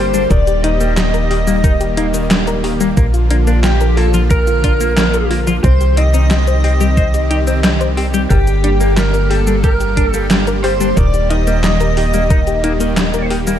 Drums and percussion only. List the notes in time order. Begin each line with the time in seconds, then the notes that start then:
0.14 closed hi-hat, shaker
0.31 kick, closed hi-hat, shaker
0.47 closed hi-hat, shaker
0.64 closed hi-hat
0.81 closed hi-hat, shaker
0.97 snare, clap, closed hi-hat, shaker
1.14 closed hi-hat, shaker
1.31 open hi-hat
1.47 closed hi-hat, shaker
1.64 kick, closed hi-hat, shaker
1.81 closed hi-hat, shaker
1.97 closed hi-hat
2.14 closed hi-hat, shaker
2.31 snare, clap, closed hi-hat, shaker
2.47 closed hi-hat, shaker
2.64 open hi-hat
2.81 closed hi-hat, shaker
2.97 kick, closed hi-hat, shaker
3.14 closed hi-hat, shaker
3.31 closed hi-hat
3.47 closed hi-hat, shaker
3.64 snare, clap, closed hi-hat, shaker
3.81 closed hi-hat, shaker
3.97 open hi-hat
4.14 closed hi-hat, shaker
4.31 kick, closed hi-hat, shaker
4.47 closed hi-hat, shaker
4.64 kick, closed hi-hat
4.81 closed hi-hat, shaker
4.97 snare, clap, closed hi-hat, shaker
5.14 closed hi-hat, shaker
5.31 open hi-hat
5.47 closed hi-hat, shaker
5.64 kick, closed hi-hat, shaker
5.81 closed hi-hat, shaker
5.97 closed hi-hat
6.14 closed hi-hat, shaker
6.31 snare, clap, closed hi-hat, shaker
6.47 closed hi-hat, shaker
6.64 open hi-hat
6.81 closed hi-hat, shaker
6.97 kick, closed hi-hat, shaker
7.14 closed hi-hat, shaker
7.31 closed hi-hat
7.47 closed hi-hat, shaker
7.64 snare, clap, closed hi-hat, shaker
7.81 closed hi-hat, shaker
7.97 open hi-hat
8.14 closed hi-hat, shaker
8.31 kick, closed hi-hat, shaker
8.47 closed hi-hat, shaker
8.64 closed hi-hat
8.81 closed hi-hat, shaker
8.97 snare, clap, closed hi-hat, shaker
9.14 closed hi-hat, shaker
9.31 open hi-hat
9.47 closed hi-hat, shaker
9.64 kick, closed hi-hat, shaker
9.80 closed hi-hat, shaker
9.97 kick, closed hi-hat
10.14 closed hi-hat, shaker
10.30 snare, clap, closed hi-hat, shaker
10.47 closed hi-hat, shaker
10.64 open hi-hat
10.81 closed hi-hat, shaker
10.97 kick, closed hi-hat, shaker
11.14 closed hi-hat, shaker
11.30 closed hi-hat
11.47 closed hi-hat, shaker
11.64 snare, clap, closed hi-hat, shaker
11.80 closed hi-hat, shaker
11.97 open hi-hat
12.14 closed hi-hat, shaker
12.30 kick, closed hi-hat, shaker
12.47 closed hi-hat, shaker
12.64 closed hi-hat
12.80 closed hi-hat, shaker
12.97 snare, clap, closed hi-hat, shaker
13.14 closed hi-hat, shaker
13.30 open hi-hat
13.47 closed hi-hat, shaker